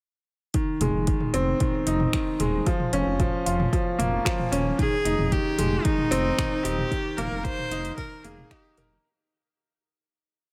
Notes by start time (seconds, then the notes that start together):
0.54 D#3, kick, closed hi-hat
0.81 F1 G#3, closed hi-hat, mid tom
0.94 F1
1.07 D#3, kick, closed hi-hat
1.20 mid tom
1.34 F1 C4, closed hi-hat
1.60 D#3, kick, closed hi-hat, mid tom
1.87 F1 D#4, closed hi-hat
2.00 mid tom
2.13 D#3, finger snap, kick, closed hi-hat
2.40 D#1 G#3, closed hi-hat, mid tom
2.66 F3, kick, closed hi-hat
2.80 mid tom
2.93 F1 C#4, closed hi-hat
3.07 F1
3.20 F3, kick, closed hi-hat, mid tom
3.46 F1 F4, closed hi-hat
3.60 mid tom
3.73 F3, kick, closed hi-hat
3.99 F1 A#3, closed hi-hat, mid tom
4.25 F3, finger snap, kick, closed hi-hat
4.40 mid tom
4.52 D#1 C#4, closed hi-hat
4.79 D#3 G#4, kick, closed hi-hat, mid tom
5.05 F1 D#4, closed hi-hat
5.19 F1, mid tom
5.32 D#3 G4, kick, closed hi-hat
5.58 F1 G#3, closed hi-hat, mid tom
5.84 D#3 D#4, kick, closed hi-hat
5.98 mid tom
6.11 F1 C4, closed hi-hat
6.38 D#3, finger snap, kick, closed hi-hat, mid tom
6.64 D#1 D#4 G4, closed hi-hat
6.78 mid tom
6.91 D#3, kick, closed hi-hat
7.17 F1 A#3 A#4, closed hi-hat, mid tom
7.31 F1
7.44 D#3 C5, kick, closed hi-hat
7.58 mid tom
7.71 F1 D#4, closed hi-hat
7.85 closed hi-hat
7.97 D#3 A#4, kick, closed hi-hat, mid tom
8.23 F1 A#3 G#4, closed hi-hat
8.38 mid tom
8.51 D#4 G4, finger snap, kick, closed hi-hat
8.77 F1 A#4, closed hi-hat, mid tom